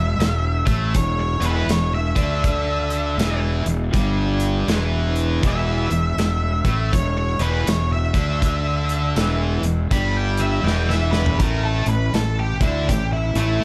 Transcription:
Already playing: E1 E2 E5
0.18 E1 E2, snare, closed hi-hat
0.66 A1 A2 A3, kick, closed hi-hat
0.94 E1 E2 C#5, kick, closed hi-hat
1.20 C#5
1.40 E1 E2 E3, closed hi-hat
1.46 B4
1.67 E1 E2 C#5, snare, closed hi-hat
1.95 E5
2.16 D2 D3 D4, kick, closed hi-hat
2.44 kick, closed hi-hat
2.90 closed hi-hat
3.18 E1 E2 E3, snare, closed hi-hat
3.65 E1 E2, closed hi-hat
3.93 G1 G2 G3, kick, closed hi-hat
4.40 closed hi-hat
4.68 E1 E2 E3, snare, closed hi-hat
5.16 closed hi-hat
5.43 E1 E2 E3 E5, kick, closed hi-hat
5.91 E1 E2, closed hi-hat
6.17 E1 E2, snare, closed hi-hat
6.65 A1 A2 A3, kick, closed hi-hat
6.93 E1 E2 C#5, kick, closed hi-hat
7.18 C#5
7.39 E1 E2 E3 B4, closed hi-hat
7.67 E1 E2 C#5, snare, closed hi-hat
7.93 E5
8.14 D2 D3 D4, kick, closed hi-hat
8.42 kick, closed hi-hat
8.89 closed hi-hat
9.16 E1 E2 E3, snare, closed hi-hat
9.63 E1 E2, closed hi-hat
9.91 G1 G2 G3 B5, kick, closed hi-hat
10.17 G5
10.37 E5, closed hi-hat
10.63 E1 E2 E3 G5, snare
10.89 E5, snare
11.11 B4, snare
11.26 floor tom
11.39 A1 A2 A3 A#4, kick, closed hi-hat
11.64 A4
11.86 A1 A2 B4, closed hi-hat
12.14 A1 A2 A4, snare, closed hi-hat
12.39 G4
12.61 D2 D3 D4 E4, kick, closed hi-hat
12.89 A1 A2 G4, kick, closed hi-hat
13.13 E4
13.35 A1 A2 A3 E4, closed hi-hat

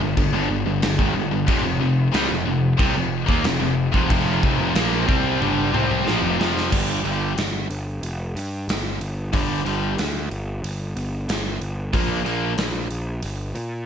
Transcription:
0.00 G1 G2 D3
0.17 G1 G2 D3, kick, crash
0.33 G1 G2 D3
0.49 G1 G2 D3
0.66 G1 G2 D3
0.82 G1 G2 D3, snare, crash
0.98 G#1 G#2 D#3, kick
1.14 G1 G2 D3
1.31 G1 G2 D3
1.46 F1 F2 C3, kick, crash
1.64 F1 F2 C3
1.79 F1 F2 C3
2.12 C2 C3 G3, snare, crash
2.29 F1 F2 C3
2.45 F1 F2 C3
2.78 C2 C3 G3, kick, crash
2.94 F1 F2 C3
3.26 D#2 D#3 A#3, kick
3.43 F1 F2 C3, snare, crash
3.60 F1 F2 C3
3.92 F1 F2 C3, kick
4.08 F1 F2 C3 F3, kick, crash
4.42 F1 F2 C3, kick
4.57 F1 F2 C3
4.74 A#1 A#2 F3 A#3, snare, crash
5.06 C2 C3 G3 C4, kick
5.39 G1 G2 D3 G3, high tom
5.72 C2 C3 G3 C4, mid tom
5.91 mid tom
6.06 A#1 A#2 F3, snare
6.22 F1 F2 C3
6.39 F1 F2 C3 F3, snare
6.57 snare
6.71 G1 G2 D3 G3, kick, crash
7.04 G1 G2 D3 G3, open hi-hat
7.38 G1, snare, open hi-hat
7.70 G1, open hi-hat
8.03 F1, open hi-hat
8.35 G2, open hi-hat
8.68 G1, snare, open hi-hat
9.01 G1, open hi-hat
9.33 G1 G2 D3 G3, kick, open hi-hat
9.65 G1 G2 D3 G3, open hi-hat
9.98 D2, snare, open hi-hat
10.30 G1, open hi-hat
10.63 G1, open hi-hat
10.96 G1, open hi-hat
11.28 G1, snare, open hi-hat
11.61 G1, open hi-hat
11.93 A#1 A#2 F3 A#3, kick, open hi-hat
12.25 A#1 A#2 F3 A#3, open hi-hat
12.58 A#1, snare, open hi-hat
12.91 A#1, open hi-hat
13.22 G1, open hi-hat
13.55 A#2, open hi-hat

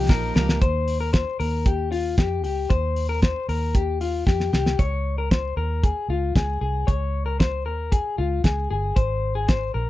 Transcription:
0.09 A#1 F3 A#3 D#4 G4 A#4, kick, snare
0.35 C#2 F3 A#3 D#4 G4 A#4, snare
0.49 snare
0.61 D#2 C5, kick, closed hi-hat
0.88 open hi-hat
1.00 A#4
1.13 C5, kick, snare, closed hi-hat
1.40 D#2 A#4, open hi-hat
1.66 G4, kick, closed hi-hat
1.92 F4, open hi-hat
2.18 F2 G4, kick, snare, closed hi-hat
2.44 C#2 G4, open hi-hat
2.70 D#2 C5, kick, closed hi-hat
2.96 open hi-hat
3.09 A#4
3.22 C5, kick, snare, closed hi-hat
3.49 D#2 A#4, open hi-hat
3.75 G4, kick, closed hi-hat
4.01 F4, open hi-hat
4.26 F2 G4, kick, snare
4.40 snare
4.53 C2 G4, snare
4.66 snare
4.79 C#2 C#5, kick, closed hi-hat
5.18 A#4
5.31 C5, kick, snare, closed hi-hat
5.57 D#2 A#4
5.83 G#4, kick, closed hi-hat
6.09 C#2 F4
6.36 C#2 G#4, kick, snare, closed hi-hat
6.61 C2 G#4
6.87 C#2 C#5, kick, closed hi-hat
7.26 A#4
7.40 C5, kick, snare, closed hi-hat
7.66 D#2 A#4
7.92 G#4, kick, closed hi-hat
8.18 C#2 F4
8.44 C#2 G#4, kick, snare, closed hi-hat
8.71 G1 G#4
8.96 G#1 C5, kick, closed hi-hat
9.35 G#4
9.48 C5, kick, snare, closed hi-hat
9.74 A#1 A#4

